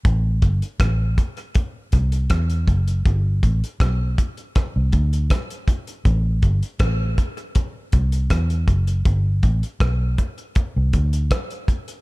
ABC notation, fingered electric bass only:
X:1
M:4/4
L:1/16
Q:1/4=80
K:Ador
V:1 name="Fingered electric bass" clef=bass
A,,,2 G,,, z A,,,2 z4 C,,2 E,,2 F,,,2 | G,,,2 A,,, z B,,,2 z3 C,, D,,2 z4 | A,,,2 G,,, z A,,,2 z4 C,,2 E,,2 F,,,2 | G,,,2 A,,, z B,,,2 z3 C,, D,,2 z4 |]